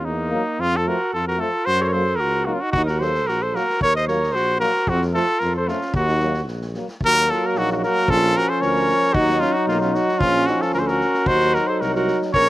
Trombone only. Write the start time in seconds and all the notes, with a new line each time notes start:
0.30 A#3
0.86 A3
1.37 A3
1.92 A#3
2.45 A#3
3.01 A#3
3.54 A#3
4.07 A#3
4.59 A#3
5.12 A3
5.68 A3
6.22 A#3
6.76 A#3
7.02 A#3
8.09 C#4
9.14 D#4
10.20 C#4
11.28 D#4
12.34 C#4